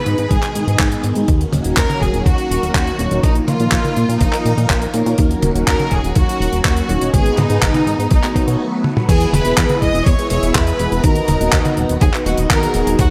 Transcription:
Already playing: B2 D#3 G#3 D#4 G#4 B4
0.06 G#2 B3 D#4 G#4 B4, closed hi-hat
0.18 G#2, closed hi-hat
0.31 G#1 G#4, kick, closed hi-hat
0.42 B3 D#4 G#4 B4, clap, closed hi-hat
0.55 G#2 B3 D#4 G#4 D#5, closed hi-hat
0.68 G#2, closed hi-hat
0.79 G#1, kick, clap, closed hi-hat
0.92 B3 D#4 G#4 A#4, closed hi-hat
1.04 G#2, closed hi-hat
1.15 G#2, closed hi-hat
1.28 D#2 F#3 A#3 C#4 D#4 F#4 A#4, kick, closed hi-hat
1.41 closed hi-hat
1.53 D#1, closed hi-hat, high tom
1.64 D#1 C#4 D#4 F#4 A#4, closed hi-hat
1.77 D#2 A#4, kick, clap, closed hi-hat
1.90 closed hi-hat, high tom
2.01 D#1 C#4 D#4 F#4 G#4 A#4, kick, closed hi-hat
2.14 D#1, closed hi-hat
2.26 D#2 F#4, kick, closed hi-hat
2.38 C#4 D#4 F#4 A#4, closed hi-hat
2.50 D#1, closed hi-hat
2.63 D#1, closed hi-hat
2.74 D#2 C#4 D#4 F#4 A#4, kick, clap, closed hi-hat
2.87 closed hi-hat
2.99 D#1 C#4 D#4 F#4 C#5, closed hi-hat
3.11 D#1, closed hi-hat
3.23 A#1 F3 A#3 D#4 F4 A#4, kick, closed hi-hat
3.35 closed hi-hat
3.48 A#2 F4, closed hi-hat, high tom
3.60 A#2 A#3 D#4 F4 A#4, closed hi-hat
3.72 A#1, kick, clap, closed hi-hat
3.85 closed hi-hat, high tom
3.96 A#2 A#3 D#4 F4 A#4, closed hi-hat
4.09 A#2, closed hi-hat
4.21 A#1 D#4, kick, closed hi-hat
4.33 A#3 D#4 F4 A#4, clap, closed hi-hat
4.46 A#2, closed hi-hat
4.58 A#2, closed hi-hat
4.70 A#1 A#3 D#4 F4 A#4, kick, clap, closed hi-hat
4.82 closed hi-hat
4.94 A#2 A#3 D#4 F4 C#5, closed hi-hat
5.06 A#2, closed hi-hat
5.18 D#2 F#3 C#4 D#4 F#4 A#4, kick, closed hi-hat
5.31 closed hi-hat
5.42 D#1, closed hi-hat, high tom
5.55 D#1 C#4 D#4 F#4 A#4, closed hi-hat
5.67 D#2 A#4, kick, clap, closed hi-hat
5.79 closed hi-hat, high tom
5.91 D#1 C#4 D#4 F#4 G#4 A#4, kick, closed hi-hat
6.04 D#1, closed hi-hat
6.15 D#2 F#4, kick, closed hi-hat
6.28 C#4 D#4 F#4 A#4, closed hi-hat
6.40 D#1, closed hi-hat
6.53 D#1, closed hi-hat
6.65 D#2 C#4 D#4 F#4 A#4, kick, clap, closed hi-hat
6.76 closed hi-hat
6.89 D#1 C#4 D#4 F#4 C#5, closed hi-hat
7.01 D#1, closed hi-hat
7.13 G#1 B2 D#3 G#3 B3 D#4 G#4 B4, kick, closed hi-hat, high tom
7.26 closed hi-hat
7.37 G#2 D#4, closed hi-hat, high tom
7.50 G#2 B3 D#4 G#4 B4, closed hi-hat
7.62 G#1, kick, clap, closed hi-hat
7.74 closed hi-hat, high tom
7.87 G#2 B3 D#4 G#4 B4, closed hi-hat
7.99 G#2, closed hi-hat
8.11 B1 F#3 A3 B3 D#4 F#4, kick, closed hi-hat
8.23 B3 D#4 F#4 A4, clap, closed hi-hat
8.36 B2 B3 D#4 F#4 C#5, kick, closed hi-hat
8.48 B2, closed hi-hat
8.84 high tom
8.97 mid tom
9.09 E2 B2 E3 G#3 B3 E4 G#4 B4 G#5, kick, closed hi-hat, crash
9.20 closed hi-hat
9.33 E1 B4 B5, closed hi-hat, high tom
9.45 E1 B3 E4 G#4 B4, closed hi-hat
9.57 E2, kick, clap, closed hi-hat
9.69 closed hi-hat, high tom
9.82 E1 B3 E4 G#4 B4 D#5 D#6, kick, closed hi-hat
9.94 E1, closed hi-hat
10.06 E2 C#5 C#6, kick, closed hi-hat
10.19 B3 E4 G#4 B4, closed hi-hat
10.30 E1 B3 E4 G#4 C#5 E5 C#6, closed hi-hat
10.43 E1, closed hi-hat
10.55 E2 B4 B5, kick, clap, closed hi-hat
10.67 B3 E4 G#4 B4, closed hi-hat
10.79 E1, closed hi-hat
10.92 E1, closed hi-hat
11.04 D#2 D#3 F#3 B3 D#4 F#4 A#4 D#5 A#5, kick, closed hi-hat
11.15 closed hi-hat
11.28 D#1, closed hi-hat, high tom
11.40 D#1 B3 D#4 F#4 D#5, closed hi-hat
11.52 D#2, kick, clap, closed hi-hat
11.65 closed hi-hat, high tom
11.77 D#1 B3 D#4 F#4 B4, closed hi-hat
11.89 D#1, closed hi-hat
12.01 D#2 G#4 G#5, kick, closed hi-hat
12.14 B3 D#4 F#4 B4, clap, closed hi-hat
12.26 D#1 B3 D#4 F#4 D#5 F#5, closed hi-hat
12.38 D#1, closed hi-hat
12.50 D#2 A#4 A#5, kick, clap, closed hi-hat
12.62 B3 D#4 F#4 G#4, closed hi-hat
12.74 D#1, closed hi-hat
12.87 D#1, closed hi-hat
12.99 D#2 A#2 D#3 A#3 D#4 F#4 A#4 F#5, kick, closed hi-hat

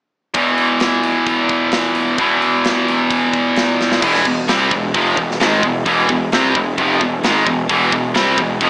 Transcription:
0.34 E2 B2 E3, kick, open hi-hat
0.58 open hi-hat
0.80 snare, open hi-hat
1.03 open hi-hat
1.27 kick, open hi-hat
1.49 kick, open hi-hat
1.72 snare, open hi-hat
1.95 open hi-hat
2.18 E2 B2 E3, kick, open hi-hat
2.42 open hi-hat
2.65 snare, open hi-hat
2.88 open hi-hat
3.10 kick, open hi-hat
3.33 kick, open hi-hat
3.56 snare, open hi-hat
3.81 snare
3.92 snare
4.01 E1 E2 B2 E3, kick, crash
4.15 snare
4.25 E1 E2 B2, kick
4.47 C2 C3 G3 C4, snare, open hi-hat
4.71 E1 E2 B2, kick
4.94 F1 F2 C3 F3, kick, open hi-hat
5.17 E1 E2 B2, kick
5.31 snare
5.40 G#1 G#2 D#3 G#3, snare, open hi-hat
5.63 E1 E2 B2, kick
5.86 E1 E2 B2 E3, kick, open hi-hat
6.09 E1 E2 B2, kick
6.31 C2 C3 G3 C4, snare, open hi-hat
6.55 E1 E2 B2, kick
6.78 F1 F2 C3 F3, kick, open hi-hat
7.01 E1 E2 B2, kick
7.23 G#1 G#2 D#3 G#3, snare, open hi-hat
7.46 E1 E2 B2, kick
7.69 E1 E2 B2 E3, kick, open hi-hat
7.92 E1 E2 B2, kick
8.14 C2 C3 G3 C4, snare, open hi-hat
8.37 E1 E2 B2, kick
8.60 F1 F2 C3 F3, kick, open hi-hat

